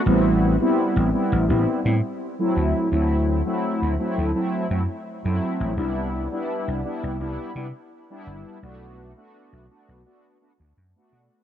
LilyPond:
<<
  \new Staff \with { instrumentName = "Analog polysynth" } { \time 4/4 \key a \dorian \tempo 4 = 84 <g b c' e'>8. <g b c' e'>8. <g b c' e'>8 <g b c' e'>8 <g b c' e'>16 r8 <fis a c' e'>8. | <fis a c' e'>8. <fis a c' e'>8. <fis a c' e'>8 <fis a c' e'>8 <fis a c' e'>16 r8 <fis a c' e'>8. | <g b d' e'>8. <g b d' e'>8. <g b d' e'>8 <g b d' e'>8 <g b d' e'>16 r8 <g b d' e'>8. | <a b d' fis'>8. <a b d' fis'>8. <a b d' fis'>8 <a b d' fis'>8 <a b d' fis'>16 r8 <a b d' fis'>8. | }
  \new Staff \with { instrumentName = "Slap bass" } { \clef bass \time 4/4 \key a \dorian a,,8. r8 a,,16 r16 a,,16 a,,16 r16 a,16 r8. d,16 r16 | d,8. r8 d,16 r16 d,16 r8 fis,16 r8 fis,16 r16 a,,16 | c,8. r8 c,16 r16 c,16 c,16 r16 c16 r8. g,,16 r16 | b,,8. r8 b,,16 r16 b,,16 r8. d,16 fis,16 r16 b,16 r16 | }
>>